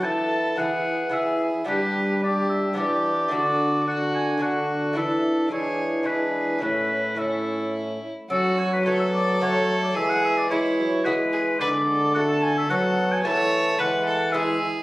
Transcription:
<<
  \new Staff \with { instrumentName = "Oboe" } { \time 3/4 \key e \mixolydian \tempo 4 = 109 a''4 fis''4 e''8. r16 | b'4 d''8 e''8 d''4 | d''4 fis''8 gis''8 fis''4 | e''4 cis''4 b'4 |
b'4 a'4 r4 | a'8 cis''16 b'16 cis''16 e''16 d''8 cis''8. d''16 | e''16 fis''16 e''16 d''16 cis''4 b'4 | d''4 fis''16 a''16 gis''16 e''16 fis''8. gis''16 |
a''4 fis''4 e''8. r16 | }
  \new Staff \with { instrumentName = "Violin" } { \time 3/4 \key e \mixolydian a'4 gis'4 gis'4 | g'4 g'4 g'4 | fis'4 fis'4 fis'4 | a'4 gis'4 gis'4 |
e'4 e'4. r8 | fis'4 a'2 | gis'4 e'4 fis'8 gis'8 | b'8 a'2~ a'8 |
cis''4 b'8 a'8 gis'4 | }
  \new Staff \with { instrumentName = "Lute" } { \time 3/4 \key e \mixolydian <b e' a'>4 <b e' gis'>4 <b e' gis'>4 | <b d' g'>2 <b d' g'>4 | <a d' fis'>2 <a d' fis'>4 | <a d' e'>4 <gis d' e'>4 <gis d' e'>4 |
<a cis' e'>4 <a cis' e'>2 | r4 <a cis' fis'>4 <a cis' fis'>4 | r4 <gis e' gis'>4 <gis e' gis'>4 | r4 <fis' a'>4 <fis' a'>4 |
<b e' a'>4 r4 <b e' gis'>4 | }
  \new Staff \with { instrumentName = "Lute" } { \clef bass \time 3/4 \key e \mixolydian e4 e2 | g2 e4 | d2. | e4 e2 |
a,2~ a,8 r8 | fis2. | e2. | d2 fis4 |
e4 e4. r8 | }
  \new Staff \with { instrumentName = "Bassoon" } { \time 3/4 \key e \mixolydian e'4 e'4 e'4 | d'4 d'4 d'4 | d'4 d'4 d'4 | d'4 d'4 d'4 |
cis'4 cis'4. r8 | cis'4 b4 a4 | gis4 gis8 fis8 gis4~ | gis4 a4 b4 |
a4 gis4 gis8 r8 | }
  \new Staff \with { instrumentName = "Trombone" } { \clef bass \time 3/4 \key e \mixolydian e4 e2 | g2 e4 | d2. | e4 e2 |
a,2~ a,8 r8 | fis2. | e2. | d2 fis4 |
e4 e4. r8 | }
>>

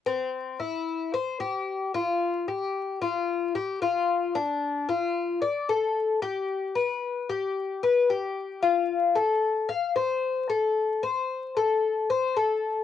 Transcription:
\new Staff \with { instrumentName = "Cuban tres" } { \time 4/4 \key c \major \tempo 4 = 112 c'4 e'4 c''8 g'4 f'8~ | f'8 g'4 f'4 g'8 f'4 | d'4 f'4 d''8 a'4 g'8~ | g'8 b'4 g'4 b'8 g'4 |
f'4 a'4 f''8 c''4 a'8~ | a'8 c''4 a'4 c''8 a'4 | }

